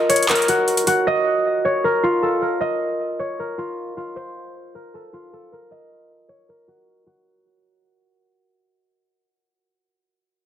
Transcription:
0, 0, Header, 1, 3, 480
1, 0, Start_track
1, 0, Key_signature, -5, "minor"
1, 0, Tempo, 387097
1, 1319, Time_signature, 4, 2, 24, 8
1, 12969, End_track
2, 0, Start_track
2, 0, Title_t, "Harp"
2, 0, Program_c, 0, 46
2, 0, Note_on_c, 0, 65, 82
2, 0, Note_on_c, 0, 70, 78
2, 0, Note_on_c, 0, 75, 106
2, 114, Note_on_c, 0, 73, 77
2, 361, Note_off_c, 0, 70, 0
2, 366, Note_on_c, 0, 70, 79
2, 601, Note_on_c, 0, 66, 80
2, 675, Note_off_c, 0, 65, 0
2, 1075, Note_off_c, 0, 66, 0
2, 1080, Note_on_c, 0, 66, 84
2, 1321, Note_off_c, 0, 75, 0
2, 1326, Note_on_c, 0, 75, 107
2, 2038, Note_off_c, 0, 73, 0
2, 2043, Note_on_c, 0, 73, 80
2, 2279, Note_off_c, 0, 70, 0
2, 2284, Note_on_c, 0, 70, 83
2, 2521, Note_on_c, 0, 65, 81
2, 2596, Note_off_c, 0, 66, 0
2, 2758, Note_on_c, 0, 69, 81
2, 2832, Note_off_c, 0, 70, 0
2, 2994, Note_on_c, 0, 70, 74
2, 3069, Note_off_c, 0, 69, 0
2, 3225, Note_off_c, 0, 75, 0
2, 3230, Note_on_c, 0, 75, 106
2, 3954, Note_off_c, 0, 73, 0
2, 3959, Note_on_c, 0, 73, 71
2, 4203, Note_off_c, 0, 70, 0
2, 4208, Note_on_c, 0, 70, 75
2, 4434, Note_off_c, 0, 65, 0
2, 4439, Note_on_c, 0, 65, 78
2, 4916, Note_off_c, 0, 65, 0
2, 4921, Note_on_c, 0, 65, 83
2, 5156, Note_on_c, 0, 72, 99
2, 5231, Note_off_c, 0, 73, 0
2, 5442, Note_off_c, 0, 75, 0
2, 5882, Note_off_c, 0, 70, 0
2, 5887, Note_on_c, 0, 70, 80
2, 6127, Note_on_c, 0, 69, 80
2, 6201, Note_off_c, 0, 70, 0
2, 6357, Note_off_c, 0, 65, 0
2, 6362, Note_on_c, 0, 65, 81
2, 6604, Note_off_c, 0, 69, 0
2, 6609, Note_on_c, 0, 69, 94
2, 6850, Note_on_c, 0, 70, 77
2, 6925, Note_off_c, 0, 69, 0
2, 7080, Note_on_c, 0, 75, 106
2, 7611, Note_off_c, 0, 72, 0
2, 7794, Note_on_c, 0, 73, 77
2, 8041, Note_off_c, 0, 70, 0
2, 8046, Note_on_c, 0, 70, 80
2, 8280, Note_on_c, 0, 66, 80
2, 8354, Note_off_c, 0, 65, 0
2, 8755, Note_off_c, 0, 66, 0
2, 8760, Note_on_c, 0, 66, 85
2, 9292, Note_off_c, 0, 75, 0
2, 10165, Note_off_c, 0, 73, 0
2, 10676, Note_off_c, 0, 70, 0
2, 11781, Note_off_c, 0, 66, 0
2, 12969, End_track
3, 0, Start_track
3, 0, Title_t, "Drums"
3, 120, Note_on_c, 9, 42, 60
3, 199, Note_off_c, 9, 42, 0
3, 199, Note_on_c, 9, 42, 60
3, 280, Note_off_c, 9, 42, 0
3, 280, Note_on_c, 9, 42, 60
3, 359, Note_off_c, 9, 42, 0
3, 359, Note_on_c, 9, 42, 66
3, 360, Note_on_c, 9, 39, 112
3, 440, Note_off_c, 9, 42, 0
3, 440, Note_on_c, 9, 42, 66
3, 484, Note_off_c, 9, 39, 0
3, 520, Note_off_c, 9, 42, 0
3, 520, Note_on_c, 9, 42, 62
3, 600, Note_off_c, 9, 42, 0
3, 600, Note_on_c, 9, 42, 70
3, 724, Note_off_c, 9, 42, 0
3, 840, Note_on_c, 9, 42, 47
3, 960, Note_off_c, 9, 42, 0
3, 960, Note_on_c, 9, 42, 76
3, 1080, Note_off_c, 9, 42, 0
3, 1080, Note_on_c, 9, 42, 70
3, 1204, Note_off_c, 9, 42, 0
3, 12969, End_track
0, 0, End_of_file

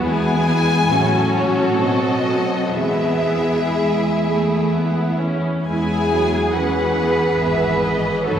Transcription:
0, 0, Header, 1, 6, 480
1, 0, Start_track
1, 0, Key_signature, 4, "major"
1, 0, Tempo, 881057
1, 27, Time_signature, 3, 2, 24, 8
1, 988, Tempo, 985222
1, 1948, Tempo, 940439
1, 2908, Tempo, 869565
1, 4415, End_track
2, 0, Start_track
2, 0, Title_t, "Violin section"
2, 0, Program_c, 0, 48
2, 29, Note_on_c, 0, 80, 77
2, 716, Note_off_c, 0, 80, 0
2, 737, Note_on_c, 0, 73, 58
2, 988, Note_off_c, 0, 73, 0
2, 995, Note_on_c, 0, 75, 55
2, 1464, Note_on_c, 0, 76, 59
2, 1470, Note_off_c, 0, 75, 0
2, 2652, Note_off_c, 0, 76, 0
2, 2904, Note_on_c, 0, 80, 63
2, 3378, Note_off_c, 0, 80, 0
2, 3393, Note_on_c, 0, 78, 49
2, 3871, Note_on_c, 0, 76, 50
2, 3874, Note_off_c, 0, 78, 0
2, 4107, Note_on_c, 0, 75, 54
2, 4109, Note_off_c, 0, 76, 0
2, 4341, Note_on_c, 0, 73, 50
2, 4347, Note_off_c, 0, 75, 0
2, 4415, Note_off_c, 0, 73, 0
2, 4415, End_track
3, 0, Start_track
3, 0, Title_t, "Violin section"
3, 0, Program_c, 1, 48
3, 31, Note_on_c, 1, 68, 45
3, 32, Note_on_c, 1, 64, 39
3, 488, Note_off_c, 1, 64, 0
3, 488, Note_off_c, 1, 68, 0
3, 499, Note_on_c, 1, 66, 39
3, 500, Note_on_c, 1, 69, 41
3, 1463, Note_on_c, 1, 64, 39
3, 1463, Note_on_c, 1, 68, 42
3, 1468, Note_off_c, 1, 66, 0
3, 1469, Note_off_c, 1, 69, 0
3, 2779, Note_off_c, 1, 64, 0
3, 2800, Note_off_c, 1, 68, 0
3, 2916, Note_on_c, 1, 64, 35
3, 2917, Note_on_c, 1, 68, 39
3, 3384, Note_off_c, 1, 64, 0
3, 3385, Note_off_c, 1, 68, 0
3, 3408, Note_on_c, 1, 68, 33
3, 3409, Note_on_c, 1, 71, 37
3, 3874, Note_off_c, 1, 71, 0
3, 3881, Note_on_c, 1, 71, 42
3, 4341, Note_off_c, 1, 71, 0
3, 4348, Note_on_c, 1, 66, 36
3, 4349, Note_on_c, 1, 69, 39
3, 4352, Note_off_c, 1, 68, 0
3, 4415, Note_off_c, 1, 66, 0
3, 4415, Note_off_c, 1, 69, 0
3, 4415, End_track
4, 0, Start_track
4, 0, Title_t, "Viola section"
4, 0, Program_c, 2, 48
4, 0, Note_on_c, 2, 59, 45
4, 33, Note_on_c, 2, 56, 43
4, 489, Note_off_c, 2, 56, 0
4, 496, Note_on_c, 2, 54, 47
4, 497, Note_off_c, 2, 59, 0
4, 498, Note_on_c, 2, 61, 42
4, 987, Note_on_c, 2, 60, 35
4, 990, Note_off_c, 2, 61, 0
4, 1456, Note_off_c, 2, 60, 0
4, 1464, Note_on_c, 2, 59, 38
4, 1466, Note_on_c, 2, 56, 38
4, 1467, Note_off_c, 2, 54, 0
4, 1892, Note_off_c, 2, 59, 0
4, 1893, Note_off_c, 2, 56, 0
4, 1949, Note_on_c, 2, 56, 40
4, 2175, Note_off_c, 2, 56, 0
4, 2197, Note_on_c, 2, 57, 44
4, 2434, Note_off_c, 2, 57, 0
4, 2435, Note_on_c, 2, 59, 39
4, 2674, Note_on_c, 2, 61, 43
4, 2675, Note_off_c, 2, 59, 0
4, 2909, Note_off_c, 2, 61, 0
4, 2911, Note_on_c, 2, 59, 34
4, 2916, Note_on_c, 2, 56, 38
4, 3142, Note_off_c, 2, 56, 0
4, 3153, Note_on_c, 2, 54, 39
4, 3381, Note_off_c, 2, 59, 0
4, 3399, Note_on_c, 2, 52, 36
4, 3401, Note_off_c, 2, 54, 0
4, 3401, Note_on_c, 2, 61, 36
4, 3641, Note_on_c, 2, 59, 39
4, 3643, Note_off_c, 2, 61, 0
4, 3872, Note_off_c, 2, 59, 0
4, 3873, Note_off_c, 2, 52, 0
4, 3880, Note_on_c, 2, 52, 33
4, 3881, Note_on_c, 2, 59, 39
4, 4341, Note_off_c, 2, 52, 0
4, 4341, Note_off_c, 2, 59, 0
4, 4352, Note_on_c, 2, 63, 38
4, 4355, Note_on_c, 2, 54, 36
4, 4415, Note_off_c, 2, 54, 0
4, 4415, Note_off_c, 2, 63, 0
4, 4415, End_track
5, 0, Start_track
5, 0, Title_t, "Cello section"
5, 0, Program_c, 3, 48
5, 35, Note_on_c, 3, 40, 45
5, 490, Note_off_c, 3, 40, 0
5, 500, Note_on_c, 3, 45, 46
5, 981, Note_off_c, 3, 45, 0
5, 996, Note_on_c, 3, 47, 42
5, 1471, Note_off_c, 3, 47, 0
5, 1473, Note_on_c, 3, 40, 38
5, 2785, Note_off_c, 3, 40, 0
5, 2915, Note_on_c, 3, 64, 39
5, 3142, Note_off_c, 3, 64, 0
5, 3163, Note_on_c, 3, 68, 39
5, 3406, Note_off_c, 3, 68, 0
5, 3406, Note_on_c, 3, 71, 49
5, 4349, Note_on_c, 3, 69, 41
5, 4351, Note_off_c, 3, 71, 0
5, 4415, Note_off_c, 3, 69, 0
5, 4415, End_track
6, 0, Start_track
6, 0, Title_t, "Double bass section"
6, 0, Program_c, 4, 48
6, 2912, Note_on_c, 4, 40, 38
6, 3858, Note_off_c, 4, 40, 0
6, 3881, Note_on_c, 4, 32, 38
6, 4342, Note_off_c, 4, 32, 0
6, 4358, Note_on_c, 4, 30, 39
6, 4415, Note_off_c, 4, 30, 0
6, 4415, End_track
0, 0, End_of_file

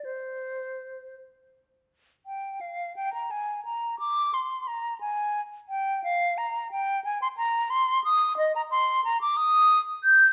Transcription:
0, 0, Header, 1, 2, 480
1, 0, Start_track
1, 0, Tempo, 736196
1, 27, Time_signature, 6, 3, 24, 8
1, 1466, Tempo, 695249
1, 2426, Tempo, 681818
1, 4826, Tempo, 665188
1, 7193, End_track
2, 0, Start_track
2, 0, Title_t, "Flute"
2, 0, Program_c, 0, 73
2, 31, Note_on_c, 0, 72, 51
2, 751, Note_off_c, 0, 72, 0
2, 1475, Note_on_c, 0, 79, 65
2, 1715, Note_on_c, 0, 77, 64
2, 1725, Note_off_c, 0, 79, 0
2, 1952, Note_off_c, 0, 77, 0
2, 1960, Note_on_c, 0, 79, 69
2, 2072, Note_off_c, 0, 79, 0
2, 2081, Note_on_c, 0, 82, 69
2, 2198, Note_on_c, 0, 80, 77
2, 2208, Note_off_c, 0, 82, 0
2, 2428, Note_off_c, 0, 80, 0
2, 2432, Note_on_c, 0, 82, 75
2, 2669, Note_off_c, 0, 82, 0
2, 2676, Note_on_c, 0, 86, 86
2, 2918, Note_on_c, 0, 84, 68
2, 2929, Note_off_c, 0, 86, 0
2, 3155, Note_on_c, 0, 82, 74
2, 3166, Note_off_c, 0, 84, 0
2, 3384, Note_off_c, 0, 82, 0
2, 3388, Note_on_c, 0, 80, 82
2, 3672, Note_off_c, 0, 80, 0
2, 3870, Note_on_c, 0, 79, 84
2, 4111, Note_off_c, 0, 79, 0
2, 4115, Note_on_c, 0, 77, 88
2, 4354, Note_on_c, 0, 82, 77
2, 4365, Note_off_c, 0, 77, 0
2, 4587, Note_off_c, 0, 82, 0
2, 4592, Note_on_c, 0, 79, 84
2, 4820, Note_off_c, 0, 79, 0
2, 4824, Note_on_c, 0, 80, 89
2, 4944, Note_off_c, 0, 80, 0
2, 4949, Note_on_c, 0, 84, 87
2, 4992, Note_off_c, 0, 84, 0
2, 5059, Note_on_c, 0, 82, 94
2, 5298, Note_on_c, 0, 84, 96
2, 5308, Note_off_c, 0, 82, 0
2, 5539, Note_off_c, 0, 84, 0
2, 5543, Note_on_c, 0, 87, 106
2, 5778, Note_off_c, 0, 87, 0
2, 5782, Note_on_c, 0, 75, 101
2, 5905, Note_off_c, 0, 75, 0
2, 5914, Note_on_c, 0, 82, 92
2, 5958, Note_off_c, 0, 82, 0
2, 6026, Note_on_c, 0, 84, 99
2, 6261, Note_off_c, 0, 84, 0
2, 6266, Note_on_c, 0, 82, 104
2, 6383, Note_off_c, 0, 82, 0
2, 6387, Note_on_c, 0, 86, 101
2, 6501, Note_on_c, 0, 87, 123
2, 6512, Note_off_c, 0, 86, 0
2, 6809, Note_off_c, 0, 87, 0
2, 6985, Note_on_c, 0, 91, 111
2, 7193, Note_off_c, 0, 91, 0
2, 7193, End_track
0, 0, End_of_file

